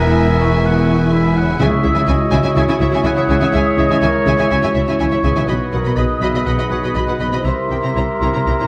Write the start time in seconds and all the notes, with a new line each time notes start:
Already playing: E1 E2 E3 G#3 B3 E4 G#4 A#4 E5 G#5 A#5
0.15 E5 G#5
0.39 C#6
0.65 F#5
1.12 E5 B5
1.37 F#5
1.42 C#3
1.46 C#4
1.51 E4
1.55 G#4 E5
1.59 C#2 C#3 G#3 E4 G#4 C#5 E5 G#5 C#6
1.83 C#2 C#3 E4 C#5 E5 E6
1.94 C#3 E4 E5 G#5
2.07 C#2 C#3 E4 F#4 D#5 E5 G#5
2.31 C#2 C#3 E4 E5 G#5
2.43 C#3 E4 E5 G#5
2.56 C#2 C#3 E4 C#5 E5 G#5 D#6
2.68 C#3 E4 E5 G#5
2.80 C#2 C#3 E4 C#5 E5
2.91 C#3 E4 E5 G#5
3.03 C#2 C#3 E4 E5 F#5 G#5
3.16 C#3 E4 C#5 E5
3.28 C#2 C#3 E4 G#4 E5 G#5
3.40 C#3 E4 E5 G#5
3.52 C#2 C#3 E4 E5 G#5
3.77 C#2 C#3 E4 C#5 D#5 E5
3.89 C#3 E4 E5 G#5
4.01 C#2 C#3 E4 A#4 C#5 E5 G#5 C#6
4.26 C#2 C#3 E4 G#4 E5 G#5
4.38 C#3 E4 E5 G#5
4.50 C#2 C#3 E4 F#4 E5 G#5
4.63 C#3 E4 E5 G#5
4.74 C#2 C#3 E4 C#5 E5
4.87 C#3 E4 E5 G#5
4.99 C#2 C#3 E4 C#5 E5 G#5 C#6
5.11 C#3 E4 C#5 E5
5.23 C#2 C#3 E4 G#4 E5 G#5
5.31 B2
5.35 C#3 D#4 E4 E5 G#5
5.39 F#4
5.44 B4 D#5
5.48 B1 B2 F#3 D#4 F#4 B4 B5 D#6
5.73 B1 B2 F#4 A#4 B4 F#5
5.84 B2 F#4 D#5 B5
5.96 B1 B2 F#4 G#4 D#5 B5
6.21 B1 B2 F#4 D#5 E5 B5
6.34 B2 F#4 D#5 B5
6.46 B1 B2 F#4 D#5 F#5 B5
6.57 B2 F#4 D#5 B5
6.71 B1 B2 F#4 B4 C#5 F#5
6.83 B2 F#4 D#5 B5
6.95 B1 B2 F#4 D#5 B5
7.07 B2 F#4 B4 F#5
7.19 B1 B2 F#4 D#5 B5
7.27 C3
7.32 B2 C4 F#4 D#5 B5
7.36 E4
7.40 A#4 A#5
7.44 C2 C3 G3 E4 G4 A#4 C5 E5 C6
7.69 C2 C3 E4 A#4 G5
7.81 C3 E4 C5 A#5
7.95 C2 C3 E4 C5 A#5
8.21 C2 C3 E4 C5 A#5
8.33 C3 E4 C5 A#5
8.46 C2 C3 E4 C5 A#5
8.60 C3 E4 C5 A#5